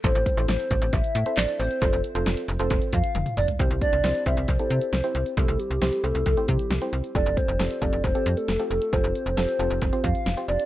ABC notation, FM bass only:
X:1
M:4/4
L:1/16
Q:1/4=135
K:F
V:1 name="FM bass" clef=bass
A,,, A,,, z A,,, A,,, z A,,, A,,, A,,, z A,, z A,,, z A,,, z | F,,, F,,, z F,,, F,,, z F,,, F,,, F,,, z F,, z F,,, z F,,, z | C,, C,, z C,, C,, z C,, C,, C,, z C, z C,, z C,, z | C,, C,, z C,, C,, z C,, C,, C,, z C, z C,, z C,, z |
F,,, F,,, z F,,, F,,, z F,,, F,,, F,,, z F,, z F,,, z F,,, z | F,,, F,,, z F,,, F,,, z F,,, F,,, F,,, z F,, z F,,, z F,,, z |]